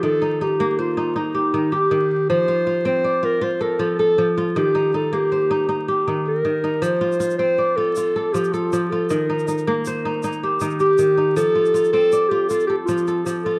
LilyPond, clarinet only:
\new Staff \with { instrumentName = "Clarinet" } { \time 12/8 \key f \mixolydian \tempo 4. = 106 a'4 g'4 f'4 ees'4. g'4. | c''4. c''4 bes'8 c''8 bes'8 a'8 a'4 r8 | g'4 a'8 g'2 r4 bes'4. | c''4. c''4 a'4. g'8 f'4 a'8 |
bes'2 r2 r8 g'4. | a'4. a'4 g'8 a'8 g'8 f'4 r8 a'8 | }